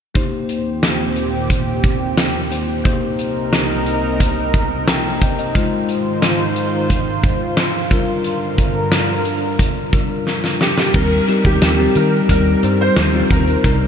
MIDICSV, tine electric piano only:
0, 0, Header, 1, 2, 480
1, 0, Start_track
1, 0, Key_signature, -3, "major"
1, 0, Tempo, 674157
1, 111, Time_signature, 4, 2, 24, 8
1, 9880, End_track
2, 0, Start_track
2, 0, Title_t, "Tine electric piano"
2, 0, Program_c, 0, 4
2, 103, Note_on_c, 0, 58, 62
2, 105, Note_on_c, 0, 63, 57
2, 112, Note_on_c, 0, 67, 57
2, 116, Note_on_c, 0, 72, 67
2, 225, Control_c, 0, 64, 127
2, 1759, Note_off_c, 0, 58, 0
2, 1760, Note_off_c, 0, 63, 0
2, 1763, Note_off_c, 0, 67, 0
2, 1765, Note_off_c, 0, 72, 0
2, 1782, Note_on_c, 0, 58, 45
2, 1785, Note_on_c, 0, 63, 42
2, 1787, Note_on_c, 0, 67, 44
2, 1793, Note_on_c, 0, 72, 52
2, 2014, Note_off_c, 0, 58, 0
2, 2021, Note_off_c, 0, 63, 0
2, 2023, Note_on_c, 0, 58, 63
2, 2025, Note_off_c, 0, 67, 0
2, 2030, Note_on_c, 0, 63, 57
2, 2032, Note_off_c, 0, 72, 0
2, 2033, Note_on_c, 0, 67, 57
2, 2040, Note_on_c, 0, 72, 70
2, 2042, Control_c, 0, 64, 0
2, 2148, Control_c, 0, 64, 127
2, 3447, Note_off_c, 0, 72, 0
2, 3477, Note_on_c, 0, 82, 57
2, 3479, Note_on_c, 0, 79, 47
2, 3702, Note_off_c, 0, 82, 0
2, 3704, Note_off_c, 0, 79, 0
2, 3721, Note_on_c, 0, 79, 60
2, 3724, Note_on_c, 0, 75, 50
2, 3828, Note_off_c, 0, 75, 0
2, 3830, Note_off_c, 0, 79, 0
2, 3837, Note_on_c, 0, 75, 55
2, 3840, Note_on_c, 0, 72, 47
2, 3918, Note_off_c, 0, 58, 0
2, 3922, Note_off_c, 0, 63, 0
2, 3924, Note_off_c, 0, 67, 0
2, 3949, Note_on_c, 0, 56, 65
2, 3954, Note_on_c, 0, 63, 57
2, 3958, Note_off_c, 0, 72, 0
2, 3960, Control_c, 0, 64, 0
2, 3961, Note_on_c, 0, 65, 59
2, 3966, Note_on_c, 0, 72, 67
2, 4062, Note_off_c, 0, 75, 0
2, 4075, Control_c, 0, 64, 127
2, 5602, Note_off_c, 0, 56, 0
2, 5604, Note_off_c, 0, 63, 0
2, 5608, Note_off_c, 0, 65, 0
2, 5610, Note_off_c, 0, 72, 0
2, 5629, Note_on_c, 0, 55, 60
2, 5635, Note_on_c, 0, 62, 57
2, 5642, Control_c, 0, 64, 0
2, 5642, Note_on_c, 0, 65, 57
2, 5647, Note_on_c, 0, 70, 67
2, 5749, Control_c, 0, 64, 127
2, 7042, Note_off_c, 0, 55, 0
2, 7044, Note_off_c, 0, 62, 0
2, 7048, Note_off_c, 0, 65, 0
2, 7051, Note_off_c, 0, 70, 0
2, 7070, Note_on_c, 0, 55, 48
2, 7072, Note_on_c, 0, 62, 44
2, 7074, Note_on_c, 0, 65, 42
2, 7078, Note_on_c, 0, 70, 54
2, 7783, Note_off_c, 0, 55, 0
2, 7790, Note_off_c, 0, 70, 0
2, 7791, Note_on_c, 0, 55, 62
2, 7792, Note_off_c, 0, 62, 0
2, 7793, Note_off_c, 0, 65, 0
2, 7793, Note_on_c, 0, 60, 57
2, 7795, Note_on_c, 0, 63, 58
2, 7798, Note_on_c, 0, 70, 73
2, 7800, Control_c, 0, 64, 0
2, 7944, Control_c, 0, 64, 127
2, 8009, Note_off_c, 0, 55, 0
2, 8010, Note_off_c, 0, 60, 0
2, 8011, Note_off_c, 0, 63, 0
2, 8013, Note_off_c, 0, 70, 0
2, 8030, Note_on_c, 0, 55, 66
2, 8031, Note_on_c, 0, 60, 60
2, 8034, Note_on_c, 0, 63, 63
2, 8036, Note_on_c, 0, 67, 73
2, 8358, Note_off_c, 0, 55, 0
2, 8358, Note_off_c, 0, 60, 0
2, 8360, Note_off_c, 0, 63, 0
2, 8361, Note_off_c, 0, 67, 0
2, 8393, Note_on_c, 0, 55, 66
2, 8398, Note_on_c, 0, 60, 63
2, 8399, Note_on_c, 0, 63, 62
2, 8403, Note_on_c, 0, 67, 71
2, 8719, Note_off_c, 0, 55, 0
2, 8722, Note_off_c, 0, 60, 0
2, 8722, Note_off_c, 0, 63, 0
2, 8724, Note_off_c, 0, 67, 0
2, 8755, Note_on_c, 0, 55, 65
2, 8757, Note_on_c, 0, 60, 63
2, 8760, Note_on_c, 0, 63, 59
2, 8763, Note_on_c, 0, 70, 72
2, 8971, Note_off_c, 0, 55, 0
2, 8972, Note_off_c, 0, 60, 0
2, 8974, Note_off_c, 0, 63, 0
2, 8975, Note_off_c, 0, 70, 0
2, 8995, Note_on_c, 0, 55, 65
2, 8996, Note_on_c, 0, 60, 61
2, 9000, Note_on_c, 0, 63, 58
2, 9002, Note_on_c, 0, 72, 71
2, 9320, Note_off_c, 0, 55, 0
2, 9321, Note_off_c, 0, 60, 0
2, 9323, Note_off_c, 0, 63, 0
2, 9324, Note_off_c, 0, 72, 0
2, 9352, Note_on_c, 0, 55, 66
2, 9358, Note_on_c, 0, 60, 60
2, 9360, Note_on_c, 0, 63, 59
2, 9363, Note_on_c, 0, 65, 74
2, 9679, Note_off_c, 0, 55, 0
2, 9682, Note_off_c, 0, 60, 0
2, 9682, Note_off_c, 0, 63, 0
2, 9684, Note_off_c, 0, 65, 0
2, 9716, Note_on_c, 0, 55, 64
2, 9720, Note_on_c, 0, 60, 61
2, 9721, Control_c, 0, 64, 0
2, 9723, Note_on_c, 0, 63, 60
2, 9727, Note_on_c, 0, 70, 71
2, 9851, Control_c, 0, 64, 127
2, 9880, Note_off_c, 0, 55, 0
2, 9880, Note_off_c, 0, 60, 0
2, 9880, Note_off_c, 0, 63, 0
2, 9880, Note_off_c, 0, 70, 0
2, 9880, End_track
0, 0, End_of_file